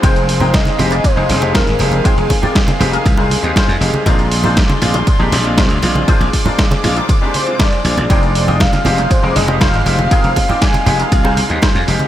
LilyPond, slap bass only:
\new Staff \with { instrumentName = "Slap bass" } { \clef bass \time 4/4 \key f \dorian \tempo 4 = 119 f,,4 r8 f,,8 r16 f,,16 f,,8. aes,,16 f,,8 | r16 f,,16 r4 f,,16 r16 c,8 r16 ees,16 r16 f,16 f,,16 r16 | bes,,4 r8 bes,,8 r16 bes,,16 bes,,8. d,16 bes,,8 | r16 bes,,16 r4 bes,,16 r4. r16 bes,,16 bes,,16 |
f,,4 r8 f,,8 r16 f,,16 f,,8. aes,,16 f,,8 | r16 f,,16 r4 f,,16 r16 c,8 r16 ees,16 r16 f,16 f,,16 r16 | }